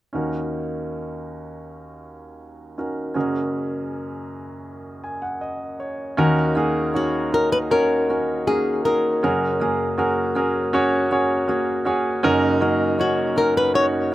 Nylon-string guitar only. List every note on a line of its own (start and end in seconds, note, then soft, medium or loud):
6.96 7.34 F#4 medium
7.34 7.52 A#4 medium
7.52 7.57 B4 medium
7.71 8.47 A#4 medium
8.47 8.85 G#4 medium
8.85 10.32 A#4 medium
13.01 13.35 F#4 medium
13.38 13.57 A#4 medium
13.57 13.75 B4 medium
13.75 13.85 C#5 medium